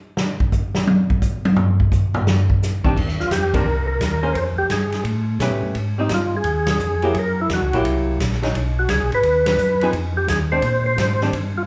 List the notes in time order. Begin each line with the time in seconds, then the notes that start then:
0.17 snare
0.40 kick
0.52 kick, hi-hat pedal
0.75 snare
0.87 high tom
1.10 kick
1.22 kick, hi-hat pedal
1.45 high tom
1.56 floor tom
1.80 kick
1.92 kick, hi-hat pedal
2.14 floor tom
2.27 snare
2.50 kick
2.62 snare, hi-hat pedal
2.84 D#3 G3 C4 D4, kick
2.96 D#2, kick, crash
3.09 snare
3.19 D#2 F4, snare
3.31 F2 G4, kick, snare, hi-hat pedal, ride
3.54 D#3 G3 C4 D4 A#4, kick, ride
3.66 C2
3.87 A#4
4.00 D#2, kick, snare, hi-hat pedal, ride
4.23 A#3 C#4 G#4 C5
4.33 F2 C5, kick, ride
4.56 F2 G4
4.70 G2 G#4, kick, snare, hi-hat pedal, ride
4.92 snare, ride
5.05 A2, kick, ride
5.39 B2 A3 C#4 G4 B4, kick, snare, hi-hat pedal, ride
5.51 A2
5.62 G2
5.75 G#2, kick, ride
5.98 G3 C4 D#4
6.09 G2, kick, snare, hi-hat pedal, ride
6.14 F4
6.37 G#4
6.44 D#2, kick, ride
6.67 G#4, snare, ride
6.79 F2, hi-hat pedal
7.02 F#3 A#3 E4 G4, ride
7.14 F#2, kick, ride
7.19 A#4
7.41 E4
7.49 E2, kick, snare, hi-hat pedal, ride
7.54 F#4
7.61 C#2
7.72 A#1 F#3 A#3 E4 G4, ride
7.84 C2, kick, ride
8.19 A#1, kick, snare, hi-hat pedal, ride
8.32 snare
8.43 F#3 G#3 D#4, snare, ride
8.54 B1, kick, ride
8.79 F#4
8.89 C#2 G#4, kick, snare, hi-hat pedal, ride
9.00 B1
9.12 G#1 B4, ride
9.23 D#2, kick, ride
9.46 B4, snare, ride
9.58 F#2, hi-hat pedal
9.81 F3 C4 D#4 G#4, ride
9.93 F2, kick, ride
10.17 G4
10.28 D#2 G#4, kick, snare, hi-hat pedal, ride
10.52 G#3 C4 D4 C5
10.62 A#2, kick, ride
10.86 C5
10.97 G#2, kick, snare, hi-hat pedal, ride
11.21 D#3 G3 C4 D4, snare
11.32 G2, kick, ride
11.58 F4